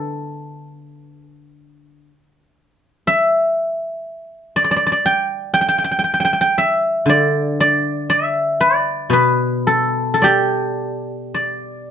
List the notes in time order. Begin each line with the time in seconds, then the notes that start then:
Already playing: D3 A3 B3 D4 E4 G4 A4 B4
1.12 G#4
1.48 G4
3.07 E5
4.56 D5
4.64 D5
4.71 D5
4.76 D5
4.86 D5
4.92 D5
5.06 G5
5.54 G5
5.61 G5
5.68 G5
5.78 G5
5.84 G5
5.91 G5
5.99 G5
6.04 G5
6.14 G5
6.20 G5
6.25 G5
6.33 G5
6.41 G5
6.58 E5
7.06 D3 D5
7.60 D5
8.10 E5
8.61 D5
9.10 B2 B4
9.67 A4
10.14 A4
10.22 G4 D5
11.34 D5